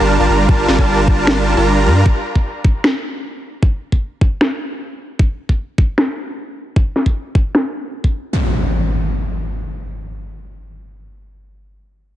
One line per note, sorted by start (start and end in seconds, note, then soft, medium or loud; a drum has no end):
0.00 0.18 G1 medium
0.00 0.17 G3 medium
0.00 0.17 D4 medium
0.00 0.17 F4 medium
0.00 0.17 A#4 medium
0.00 0.17 A5 loud
0.20 0.27 G1 medium
0.20 0.27 G3 medium
0.20 0.27 D4 medium
0.20 0.27 F4 medium
0.20 0.27 A#4 medium
0.20 0.27 A5 loud
0.29 0.47 G1 loud
0.29 0.47 G3 medium
0.29 0.47 D4 medium
0.29 0.47 F4 medium
0.29 0.47 A#4 medium
0.29 0.47 A#5 medium
0.49 0.67 G1 medium
0.49 0.66 G3 medium
0.49 0.66 D4 medium
0.49 0.66 F4 medium
0.49 0.66 A#4 medium
0.49 0.66 A5 loud
0.49 kick loud
0.68 0.77 G1 medium
0.68 0.76 G3 medium
0.68 0.76 D4 medium
0.68 0.76 F4 medium
0.68 0.76 A#4 medium
0.68 0.76 A5 medium
0.68 snare medium
0.79 1.55 G1 medium
0.79 1.55 G3 medium
0.79 1.55 D4 medium
0.79 1.55 F4 medium
0.79 1.55 A#4 medium
0.79 1.55 A5 loud
0.79 kick medium
1.08 kick medium
1.27 finger snap medium
1.27 snare loud
1.57 1.88 G1 medium
1.57 1.84 G3 medium
1.57 1.84 D4 medium
1.57 1.84 F4 medium
1.57 1.84 A#4 medium
1.57 1.84 A#5 medium
1.86 2.04 G2 medium
1.86 2.03 G3 medium
1.86 2.03 D4 medium
1.86 2.03 F4 medium
1.86 2.03 A#4 medium
1.86 2.03 A#5 medium
2.06 kick loud
2.35 kick medium
2.65 kick medium
2.84 finger snap medium
2.84 snare loud
3.63 kick loud
3.92 kick medium
4.21 kick medium
4.41 finger snap medium
4.41 snare loud
5.19 kick loud
5.49 kick medium
5.78 kick medium
5.98 finger snap medium
5.98 snare loud
6.76 kick loud
6.96 snare medium
7.06 kick medium
7.35 kick medium
7.55 finger snap medium
7.55 snare loud
8.04 kick medium
8.33 impact medium